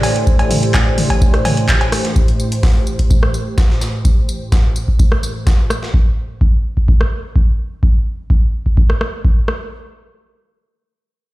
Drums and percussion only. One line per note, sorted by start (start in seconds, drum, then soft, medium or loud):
0.03 snare soft
0.03 open hi-hat loud
0.03 tambourine medium
0.03 cowbell medium
0.16 closed hi-hat medium
0.27 kick loud
0.27 tambourine medium
0.39 closed hi-hat soft
0.39 cowbell medium
0.51 open hi-hat loud
0.51 mid tom medium
0.51 tambourine medium
0.63 closed hi-hat medium
0.74 kick loud
0.74 snare loud
0.74 clap loud
0.74 tambourine medium
0.74 cowbell medium
0.98 open hi-hat loud
0.98 mid tom medium
0.98 tambourine medium
1.10 kick medium
1.10 closed hi-hat medium
1.10 cowbell medium
1.21 kick loud
1.21 tambourine medium
1.34 cross-stick medium
1.34 closed hi-hat soft
1.45 open hi-hat loud
1.45 mid tom medium
1.45 tambourine medium
1.45 cowbell medium
1.57 closed hi-hat medium
1.69 kick loud
1.69 snare loud
1.69 clap loud
1.69 tambourine medium
1.81 closed hi-hat soft
1.81 cowbell medium
1.92 cross-stick medium
1.92 open hi-hat loud
1.92 tambourine medium
2.05 snare medium
2.05 closed hi-hat medium
2.16 kick loud
2.16 tambourine medium
2.28 closed hi-hat soft
2.40 tambourine medium
2.52 closed hi-hat soft
2.63 kick loud
2.63 snare loud
2.63 open hi-hat medium
2.87 tambourine medium
2.99 kick medium
2.99 closed hi-hat soft
3.10 kick loud
3.10 tambourine medium
3.23 cross-stick medium
3.34 tambourine medium
3.58 kick loud
3.58 snare loud
3.58 tambourine medium
3.70 snare soft
3.81 snare soft
3.81 tambourine medium
4.05 kick loud
4.05 tambourine medium
4.29 tambourine medium
4.52 kick loud
4.52 snare loud
4.52 tambourine medium
4.76 tambourine medium
4.88 kick medium
4.99 kick loud
4.99 tambourine medium
5.12 cross-stick medium
5.23 tambourine medium
5.47 kick loud
5.47 snare loud
5.47 tambourine medium
5.70 cross-stick medium
5.70 tambourine medium
5.83 snare medium
5.94 kick loud
6.41 kick loud
6.77 kick medium
6.88 kick loud
7.01 cross-stick medium
7.36 kick loud
7.83 kick loud
8.30 kick loud
8.66 kick medium
8.77 kick loud
8.90 cross-stick medium
9.01 cross-stick medium
9.25 kick loud
9.48 cross-stick medium